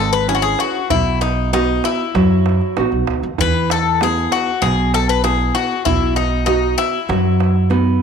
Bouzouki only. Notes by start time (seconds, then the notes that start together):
Already playing: A4
0.13 B4
0.29 G#4
0.35 F#4
0.42 G#4
0.60 F#4
0.90 E4
1.21 D#4
1.53 D#4
1.85 E4
3.41 B4
3.71 A4
4.03 G#4
4.32 F#4
4.62 G#4
4.94 A4
5.09 B4
5.24 G#4
5.55 F#4
5.85 E4
6.16 D#4
6.46 D#4
6.78 E4